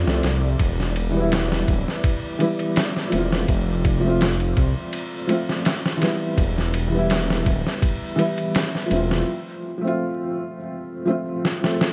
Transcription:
Already playing: felt piano F3 A3 C4 F4, synth texture D5
0.04 detuned saw bass C2, felt piano F3 A3 C4, snare
0.09 felt piano A4
0.23 detuned saw bass C2, snare, ride
0.59 detuned saw bass E1, kick, ride
0.80 snare
0.96 ride
1.11 felt piano E3 G3
1.17 felt piano B3 E4
1.32 snare, ride
1.52 snare
1.68 detuned saw bass D1, kick, ride
1.88 snare
2.04 kick, ride
2.39 felt piano E3 G3 B3, ride
2.44 felt piano E4
2.59 ride
2.76 snare, ride
2.96 snare
3.08 felt piano F3 A3, ride
3.13 detuned saw bass E1, felt piano C4
3.18 felt piano F4
3.32 snare
3.48 detuned saw bass F1, kick, ride
3.85 kick, ride
4.00 felt piano F3 A3
4.06 felt piano C4 F4
4.21 snare, open hi-hat
4.40 ride
4.57 detuned saw bass C2, kick, ride
4.93 ride
5.27 felt piano F3 A3 C4, ride
5.32 felt piano F4
5.49 snare
5.65 snare, ride
5.86 snare
5.97 felt piano E3 G3
6.02 felt piano B3, snare, ride
6.07 felt piano E4
6.38 detuned saw bass E1, kick, ride
6.58 snare
6.74 ride
6.88 felt piano E3 G3
6.95 felt piano B3 E4
7.10 snare, ride
7.30 snare
7.46 detuned saw bass D1, kick, ride
7.67 snare
7.82 kick, ride
8.16 felt piano E3 G3 B3, ride
8.21 felt piano E4
8.38 ride
8.55 snare, ride
8.75 snare
8.86 felt piano F3 A3
8.91 detuned saw bass E1, felt piano C4, ride
8.96 felt piano F4
9.11 snare
9.78 felt piano F3 A3
9.84 felt piano C4 F4
11.05 felt piano F3 A3 C4
11.11 felt piano F4
11.45 snare
11.61 felt piano F3 A3 C4, snare
11.66 felt piano A4
11.81 snare

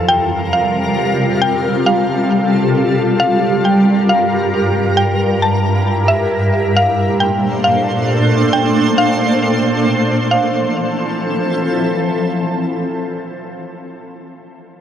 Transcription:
Already playing: ambient pad C3 G3 F4 A#4
0.08 synth pluck G5
0.53 synth pluck F5
1.42 ambient pad A4, synth pluck G5
1.86 synth pluck F5
3.20 ambient pad G2 A#4, synth pluck F5
3.65 synth pluck G5
4.09 synth pluck F5
4.97 ambient pad E4, synth pluck G5
5.42 synth pluck A5
6.08 synth pluck E5
6.76 ambient pad A#2 A3 D4 C5, synth pluck F5
7.20 synth pluck G5
7.64 synth pluck F5
8.53 synth pluck G5
8.98 synth pluck F5
10.31 ambient pad E3 F3 C4 A4, synth pluck F5

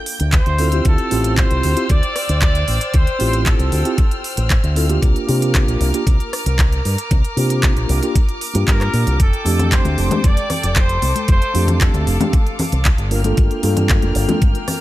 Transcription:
Already playing: violin section A#3 G5 G6
0.06 open hi-hat
0.20 fingered electric bass D2, closed hi-hat
0.32 trumpet section C5, kick, clap, closed hi-hat
0.46 fingered electric bass D2, closed hi-hat
0.59 tine electric piano C4 E4 F4 A4, violin section C5 G5 E6 F6, open hi-hat
0.72 tine electric piano C4 E4 F4 G4, closed hi-hat
0.85 fingered electric bass D2, trumpet section A4, kick, closed hi-hat
0.98 closed hi-hat
1.11 fingered electric bass A1, tine electric piano C4 E4 F4 G4, open hi-hat
1.24 closed hi-hat
1.38 trumpet section C5, kick, clap, closed hi-hat
1.51 fingered electric bass C2, closed hi-hat
1.63 fingered electric bass D2, open hi-hat
1.76 tine electric piano C4 E4 F4 G4, closed hi-hat
1.89 fingered electric bass D2, trumpet section D5, kick, closed hi-hat
2.03 closed hi-hat
2.16 cross-stick, open hi-hat
2.29 fingered electric bass D2, closed hi-hat
2.42 trumpet section D5, kick, clap, closed hi-hat
2.55 closed hi-hat
2.68 fingered electric bass A1, open hi-hat
2.81 closed hi-hat
2.94 fingered electric bass D2, trumpet section C5, kick, closed hi-hat
3.07 closed hi-hat
3.19 fingered electric bass A1, tine electric piano C4 E4 F4 G4, open hi-hat
3.33 closed hi-hat
3.46 trumpet section A4, kick, clap, closed hi-hat
3.59 fingered electric bass C2, closed hi-hat
3.72 fingered electric bass D2, open hi-hat
3.85 tine electric piano C4 E4 F4 G4, closed hi-hat
3.98 kick, closed hi-hat
4.11 closed hi-hat
4.24 open hi-hat
4.37 fingered electric bass A1, closed hi-hat
4.50 kick, clap, closed hi-hat
4.64 fingered electric bass D2, closed hi-hat
4.76 tine electric piano C4 E4 F4 A4, open hi-hat
4.89 tine electric piano A#3 D4 F4 G4, closed hi-hat
5.02 fingered electric bass C2, violin section A#4 D6, kick, closed hi-hat
5.16 closed hi-hat
5.27 fingered electric bass C3, tine electric piano A#3 D4 F4 G4, open hi-hat
5.42 closed hi-hat
5.55 kick, clap, closed hi-hat
5.68 fingered electric bass A#1, closed hi-hat
5.80 fingered electric bass C2, open hi-hat
5.94 tine electric piano A#3 D4 F4 G4, closed hi-hat
6.07 fingered electric bass C2, kick, closed hi-hat
6.20 closed hi-hat
6.33 cross-stick, open hi-hat
6.46 fingered electric bass C2, closed hi-hat
6.59 kick, clap, closed hi-hat
6.72 closed hi-hat
6.85 fingered electric bass G2, open hi-hat
6.98 closed hi-hat
7.11 fingered electric bass C2, kick, closed hi-hat
7.25 closed hi-hat
7.37 fingered electric bass C3, tine electric piano A#3 D4 F4 G4, open hi-hat
7.50 closed hi-hat
7.63 kick, clap, closed hi-hat
7.76 fingered electric bass A#1, closed hi-hat
7.89 fingered electric bass C2, open hi-hat
8.03 tine electric piano A#3 D4 F4 G4, closed hi-hat
8.15 kick, closed hi-hat
8.29 closed hi-hat
8.41 open hi-hat
8.53 fingered electric bass G2, tine electric piano A#3 D4 F4 G4, closed hi-hat
8.68 fingered electric bass G2, trumpet section A#4, kick, clap, closed hi-hat
8.81 cross-stick, clap, closed hi-hat
8.94 fingered electric bass A#2, open hi-hat
9.07 fingered electric bass C2, closed hi-hat
9.20 fingered electric bass F1, violin section A4 G5, trumpet section A4, kick, closed hi-hat
9.33 closed hi-hat
9.45 fingered electric bass F2, tine electric piano A3 C4 D4 G4, open hi-hat, muted conga
9.59 closed hi-hat, low conga
9.72 trumpet section C5, kick, clap, closed hi-hat
9.85 fingered electric bass D2, closed hi-hat, muted conga
9.98 fingered electric bass F1, open hi-hat
10.11 tine electric piano A3 C4 D4 G4, closed hi-hat, high conga, low conga
10.24 fingered electric bass F1, trumpet section D5, kick, closed hi-hat
10.37 closed hi-hat
10.50 cross-stick, open hi-hat, low conga
10.63 fingered electric bass F1, closed hi-hat
10.76 trumpet section C5, kick, clap, closed hi-hat
10.89 closed hi-hat
11.02 fingered electric bass C2, open hi-hat, muted conga
11.16 closed hi-hat, high conga
11.28 fingered electric bass F1, trumpet section C5, violin section F5, kick, closed hi-hat
11.42 closed hi-hat
11.54 fingered electric bass F2, tine electric piano A3 C4 D4 G4, open hi-hat, muted conga
11.68 closed hi-hat, low conga
11.81 trumpet section A4, kick, clap, closed hi-hat
11.94 fingered electric bass D2, closed hi-hat, muted conga
12.07 fingered electric bass F1, open hi-hat
12.20 tine electric piano A3 C4 D4 G4, closed hi-hat, high conga, low conga
12.33 kick, closed hi-hat
12.47 closed hi-hat
12.59 open hi-hat, low conga
12.72 fingered electric bass C2, closed hi-hat
12.85 kick, clap, closed hi-hat
12.98 fingered electric bass G1, closed hi-hat
13.11 tine electric piano A#3 D4 F4 A#4, violin section A#3 G5 F6, open hi-hat
13.24 tine electric piano A#3 D4 F4 A4, closed hi-hat, high conga
13.37 fingered electric bass G1, kick, closed hi-hat
13.51 closed hi-hat
13.63 fingered electric bass G2, tine electric piano A#3 D4 F4 A4, open hi-hat, muted conga
13.76 closed hi-hat, low conga
13.89 kick, clap, closed hi-hat
14.02 fingered electric bass F1, closed hi-hat, muted conga
14.15 fingered electric bass G1, open hi-hat
14.28 tine electric piano A#3 D4 F4 A4, closed hi-hat, high conga, low conga
14.42 fingered electric bass G1, kick, closed hi-hat
14.55 closed hi-hat
14.68 cross-stick, open hi-hat, low conga

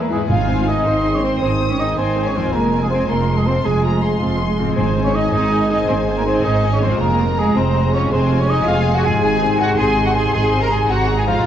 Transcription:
Already playing: cello section E2, harp E3 G#3 B3 E4 G#4 B4 E5, viola section E4
0.01 cello section A#3, violin section A#4, cor anglais A#4
0.10 harp G#2 B4, cello section G#3, french horn section G#3 E4, viola section E4, violin section G#4 B4, cor anglais G#4
0.17 harp C4
0.21 harp D#4
0.26 double bass section G#1, timpani G#2, trombone section D#3 C4, viola section D#4 G#4, cello section F4, harp G#4, violin section F5 G#5
0.30 cor anglais F5
0.48 viola section C4 C5
0.67 cello section D#4, viola section D#4 G#4, violin section D#5, cor anglais D#5
0.86 double bass section G#1, viola section C4 C5, violin section C6
1.05 viola section D#4 G#4
1.14 cello section C#4, violin section C#5, cor anglais C#5
1.23 cello section C4, viola section C4 C5, cor anglais C5, violin section C5
1.42 double bass section G#1, cello section C4, viola section D#4 G#4, cor anglais C5, violin section C5 D#6
1.61 viola section C4 C5
1.70 cello section C#4, violin section C#5, cor anglais C#5
1.79 cello section D#4, viola section D#4 G#4, cor anglais D#5, violin section D#5
1.98 double bass section G#1, cello section C4, viola section C4 C5, cor anglais C5, violin section C5 G#5
2.16 viola section D#4 G#4
2.26 cello section C#4, cor anglais C#5, violin section C#5
2.35 harp F2, cello section C4, viola section C4 C5, cor anglais C5, violin section C5
2.41 harp C4
2.46 harp F4
2.50 double bass section F1, trombone section F3, viola section G#3 G#4, cello section A#3, harp G#4, cor anglais A#4
2.54 trombone section G#3, violin section A#4
2.72 viola section C4 F4
2.82 cello section G#3, cor anglais G#4, violin section G#4
2.90 viola section G#3 G#4, cello section C4, cor anglais C5, violin section C5
3.08 double bass section F1, cello section A#3, viola section C4 F4, cor anglais A#4, violin section A#4 C6
3.29 viola section G#3 G#4
3.37 cello section G#3, cor anglais G#4, violin section G#4
3.46 cello section C4, viola section C4 F4, cor anglais C5, violin section C5
3.65 double bass section F1, viola section G#3 G#4, cello section G#3, cor anglais G#4, violin section G#4 G#5
3.84 viola section C4 F4, violin section A#5
4.03 viola section G#3 G#4, violin section C6
4.21 double bass section F1, viola section C4 F4
4.40 viola section G#3 G#4
4.59 harp G#2, viola section C4 F4
4.64 harp C4
4.68 harp D#4
4.73 harp G#4, cor anglais C5
4.78 double bass section G#1, timpani G#2, trombone section D#3, cello section C4, viola section D#4 G#4, violin section C5 G#5
4.96 viola section C4 C5
5.04 cello section C#4, cor anglais C#5, violin section C#5
5.15 cello section D#4, viola section D#4 G#4, cor anglais D#5, violin section D#5
5.33 double bass section G#1, viola section C4 C5, cello section D#4, cor anglais D#5, violin section D#5
5.51 viola section D#4 G#4
5.70 viola section C4 C5, cello section D#4, cor anglais D#5, violin section D#5
5.88 double bass section G#1, cello section C4, viola section D#4 G#4, cor anglais C5, violin section C5
6.07 viola section C4 C5
6.17 cello section A#3, violin section A#4, cor anglais A#4
6.26 cello section C4, viola section D#4 G#4, cor anglais C5, violin section C5
6.45 double bass section G#1, viola section C4 C5, cello section D#4, cor anglais D#5, violin section D#5
6.64 viola section D#4 G#4
6.73 cello section C#4, cor anglais C#5, violin section C#5
6.82 harp F2, viola section C4 C5, cello section C4, cor anglais C5, violin section C5
6.87 harp C4
6.92 harp F4
6.97 trombone section C3 G#3, harp G#4, cor anglais A#4
7.01 double bass section F1, viola section G#3 G#4, cello section A#3, violin section A#4 A#5
7.19 viola section C4 F4
7.38 viola section G#3 G#4, cello section G#3, cor anglais G#4, violin section G#4
7.56 double bass section F1, viola section C4 F4, cello section C4, cor anglais C5, violin section C5
7.76 viola section G#3 G#4
7.93 viola section C4 F4, cello section C#4, cor anglais C#5, violin section C#5
8.11 double bass section F1, viola section G#3 G#4, cello section C4, violin section C5 G#5, cor anglais C5
8.30 viola section C4 F4
8.39 cello section C#4, violin section C#5, cor anglais C#5
8.49 viola section G#3 G#4, cello section D#4, violin section D#5, cor anglais D#5
8.67 double bass section F1, viola section C4 F4, cello section F4, violin section F5, cor anglais F5
8.86 viola section G#3 G#4
8.95 cello section F#4, violin section F#5, cor anglais F#5
9.04 harp G#2, viola section C4 F4, cello section G#4, violin section G#5, cor anglais G#5
9.09 harp C4
9.14 harp D#4
9.18 harp G#4, cello section G#4
9.22 double bass section G#1, viola section D#4 G#4, violin section G#5, cor anglais G#5
9.41 viola section C4 C5
9.59 viola section D#4 G#4, cello section F#4, cor anglais F#5, violin section F#5
9.77 double bass section G#1, viola section C4 C5, cello section G#4, cor anglais G#5, violin section G#5 C6
9.96 viola section D#4 G#4
10.05 cello section F#4, violin section F#5, cor anglais F#5
10.15 viola section C4 C5, cello section G#4, violin section G#5, cor anglais G#5
10.33 double bass section G#1, viola section D#4 G#4, cello section G#4, violin section G#5, cor anglais G#5
10.53 viola section C4 C5
10.61 cello section A#4, cor anglais A#4, violin section A#5
10.71 viola section D#4 G#4, cello section G#4, cor anglais G#5, violin section G#5
10.89 double bass section G#1, viola section C4 C5, cello section F#4, cor anglais F#5, violin section F#5 A#5
11.09 viola section D#4 G#4
11.17 cello section G#4, violin section G#5, cor anglais G#5
11.27 harp F2, viola section C4 C5, cello section F4, cor anglais F5, violin section F5
11.32 harp C4
11.36 harp F4
11.41 harp G#4

